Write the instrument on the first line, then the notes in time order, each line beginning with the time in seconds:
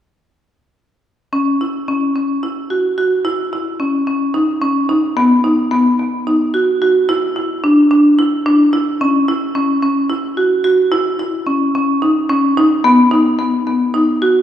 marimba
1.33 C#4
1.61 E4
1.88 C#4
2.16 C#4
2.43 E4
2.70 F#4
2.98 F#4
3.25 E4
3.53 E4
3.80 C#4
4.07 C#4
4.34 D#4
4.62 C#4
4.89 D#4
5.17 B3
5.44 D#4
5.71 B3
5.99 B3
6.27 D#4
6.54 F#4
6.82 F#4
7.09 E4
7.36 E4
7.64 D4
7.91 D4
8.19 E4
8.46 D4
8.73 E4
9.01 C#4
9.28 E4
9.55 C#4
9.83 C#4
10.10 E4
10.37 F#4
10.64 F#4
10.92 E4
11.19 E4
11.47 C#4
11.75 C#4
12.02 D#4
12.29 C#4
12.57 D#4
12.84 B3
13.11 D#4
13.39 B3
13.67 B3
13.94 D#4
14.22 F#4